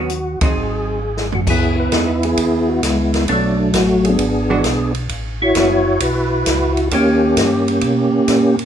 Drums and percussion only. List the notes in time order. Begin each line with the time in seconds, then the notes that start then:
0.09 closed hi-hat
0.41 kick, ride
1.17 snare
1.32 floor tom
1.47 kick, crash
1.92 kick, snare, hi-hat pedal, ride
2.23 ride
2.37 kick, ride
2.83 kick, snare, hi-hat pedal, ride
3.14 snare, ride
3.28 kick, ride
3.73 kick, snare, hi-hat pedal, ride
4.05 ride
4.19 kick, ride
4.64 kick, snare, hi-hat pedal, ride
4.95 ride
5.09 kick, ride
5.55 kick, snare, hi-hat pedal, ride
6.00 kick, ride
6.46 kick, snare, hi-hat pedal, ride
6.77 ride
6.91 kick, ride
7.37 kick, snare, hi-hat pedal, ride
7.68 ride
7.81 kick, ride
8.28 kick, snare, hi-hat pedal, ride
8.59 ride